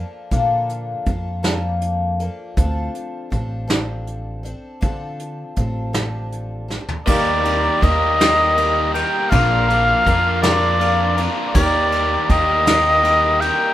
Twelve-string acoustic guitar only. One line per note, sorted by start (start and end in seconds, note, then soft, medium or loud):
0.00 0.31 F3 medium
0.00 0.31 A#3 soft
0.00 0.31 D4 medium
0.00 0.31 A4 medium
0.31 1.07 A#2 medium
0.31 1.07 D3 medium
0.31 1.05 F3 medium
0.31 1.06 A#3 medium
0.31 1.08 D4 medium
0.31 1.08 A4 medium
1.06 1.43 F3 soft
1.06 1.43 A#3 medium
1.06 1.42 D4 medium
1.06 1.42 A4 medium
1.43 2.20 A#2 medium
1.43 2.20 D3 medium
1.43 2.22 F3 medium
1.43 2.20 A#3 medium
1.43 2.21 D4 medium
1.43 2.19 A4 medium
2.20 2.56 F3 medium
2.20 2.57 A#3 medium
2.20 2.57 D4 medium
2.20 2.57 A4 medium
2.57 3.32 D3 medium
2.57 3.29 F3 medium
2.57 3.30 C4 medium
2.57 3.31 D4 medium
2.57 3.33 A4 medium
3.30 3.68 F3 medium
3.30 3.68 C4 medium
3.30 3.67 D4 medium
3.30 3.66 A4 medium
3.68 4.45 D3 medium
3.68 4.45 F3 medium
3.68 4.44 C4 medium
3.68 4.43 D4 medium
3.68 4.42 A4 medium
4.43 4.81 C4 soft
4.43 4.81 D4 soft
4.43 4.82 A4 medium
4.81 5.57 D3 medium
4.81 5.55 F3 medium
4.81 5.56 C4 medium
4.81 5.57 D4 medium
4.81 5.58 A4 medium
5.56 5.94 F3 medium
5.56 5.93 C4 medium
5.56 5.93 D4 medium
5.56 5.92 A4 medium
5.93 6.70 D3 medium
5.93 6.70 F3 medium
5.93 6.70 C4 medium
5.93 6.69 D4 medium
5.93 6.67 A4 medium
6.68 7.07 C4 soft
6.68 7.07 D4 medium
6.68 7.07 A4 medium
7.06 7.82 D#3 medium
7.06 7.80 G3 medium
7.06 7.83 A#3 medium
7.06 7.82 D#4 medium
7.06 7.84 A#4 medium
7.81 8.19 G3 medium
7.81 8.20 A#3 medium
7.81 8.19 D#4 medium
7.81 8.19 A#4 medium
8.20 8.96 D#3 medium
8.20 8.95 G3 medium
8.20 8.97 A#3 medium
8.20 8.94 D#4 medium
8.20 8.94 A#4 medium
8.94 9.31 A#3 soft
8.94 9.32 D#4 medium
8.94 9.32 A#4 medium
9.31 10.06 A#2 medium
9.31 10.06 D3 medium
9.31 10.03 F3 medium
9.31 10.05 A#3 medium
9.31 10.06 D4 medium
9.31 10.07 A#4 medium
10.04 10.43 F3 medium
10.04 10.43 A#3 medium
10.04 10.42 D4 medium
10.04 10.42 A#4 medium
10.43 11.19 A#2 medium
10.43 11.19 D3 medium
10.43 11.19 F3 medium
10.43 11.18 A#3 medium
10.43 11.17 D4 medium
10.43 11.16 A#4 medium
11.17 11.54 F3 soft
11.17 11.54 A#3 soft
11.17 11.55 D4 medium
11.17 11.55 A#4 medium
11.54 12.30 D#3 medium
11.54 12.29 G3 medium
11.54 12.30 A#3 medium
11.54 12.30 D#4 medium
11.54 12.33 G4 loud
12.30 12.67 G3 medium
12.30 12.66 A#3 medium
12.30 12.65 D#4 medium
12.30 12.65 G4 medium
12.66 13.42 D#3 medium
12.66 13.74 G3 medium
12.66 13.42 A#3 medium
12.66 13.40 D#4 medium
12.66 13.40 G4 medium
13.40 13.74 A#3 medium
13.40 13.74 D#4 medium
13.40 13.74 G4 medium